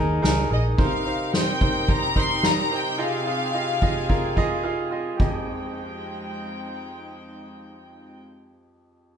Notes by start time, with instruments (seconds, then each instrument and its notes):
Already playing: fingered electric bass D#2, grand piano D#3 D#4 G#4 A#4, string section G#3 A#3 D#4
0.22 fingered electric bass C#2, grand piano D#4 G#4 A#4, snare
0.50 fingered electric bass A#1, grand piano D#4 G#4 A#4, violin section D#5
0.78 grand piano C3 D#4 A#4 C5, string section C3 C4 D#4 G4 A#4, violin section F5, kick
1.05 grand piano D#4 A#4 C5
1.33 grand piano D#4 A#4 C5, violin section G5, snare
1.61 grand piano D#4 A#4 C5, kick
1.88 grand piano D#4 A#4 C5, violin section A#5, kick
2.16 grand piano D#4 A#4 C5, violin section C6, kick
2.43 grand piano D#4 A#4 C5, violin section A#5, snare
2.71 grand piano D#4 A#4 C5, violin section G5
2.98 grand piano C3 F4 G#4 D#5, string section G#4, violin section F5
3.26 grand piano F4 G#4 D#5
3.53 grand piano F4 G#4 D#5
3.81 grand piano F4 G#4 D#5, kick
4.08 grand piano F4 G#4 A#4, kick
4.36 grand piano F4 G#4 D#5, kick
4.64 grand piano F4 G#4 F5
4.91 grand piano F4 G#4 D#5
5.17 grand piano F2 G4 G#4, string section F3 G#3 C4 D#4 G5, kick, ride
5.21 grand piano D#5